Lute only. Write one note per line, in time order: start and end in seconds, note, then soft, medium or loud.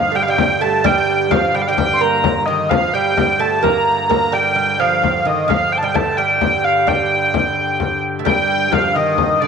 0.00 0.12 F3 medium
0.12 0.27 G3 medium
0.12 0.15 A3 medium
0.28 0.62 G3 medium
0.61 0.85 A3 medium
0.84 1.28 G3 medium
1.31 1.54 F3 medium
1.54 1.67 G3 medium
1.68 1.99 G3 medium
2.01 2.44 A#3 medium
2.48 2.71 D#3 medium
2.71 2.94 F3 medium
2.95 3.16 G3 medium
3.17 3.41 G3 medium
3.39 3.62 A3 medium
3.63 4.08 A#3 medium
4.09 4.33 A#3 medium
4.32 4.54 G3 medium
4.56 4.79 G3 medium
4.80 5.27 F3 medium
5.25 5.49 D#3 medium
5.48 5.82 F3 medium
5.83 5.95 G3 medium
5.94 6.18 A3 medium
6.18 6.85 G3 medium
6.87 7.99 G3 medium
8.19 8.26 A3 medium
8.25 8.69 G3 medium
8.72 8.96 F3 medium
8.96 9.41 D#3 medium
9.42 9.47 D3 medium